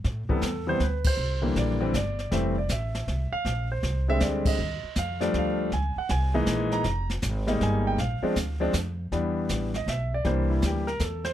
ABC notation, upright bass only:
X:1
M:3/4
L:1/8
Q:"Swing" 1/4=159
K:Am
V:1 name="Upright bass" clef=bass
A,, z E,,2 D,,2 | C,,2 _B,,,2 G,,,2 | F,,,2 A,,,2 C,, z | _B,,,2 C,,2 D,,2 |
_E,, z F,,2 D,,2 | _D,, z C,,2 _B,,,2 | F,,,2 _A,,,2 G,,,2 | _B,,, z D,,2 F,,2 |
E,,2 A,,,2 B,,,2 | C,,2 D,,2 E,,2 |]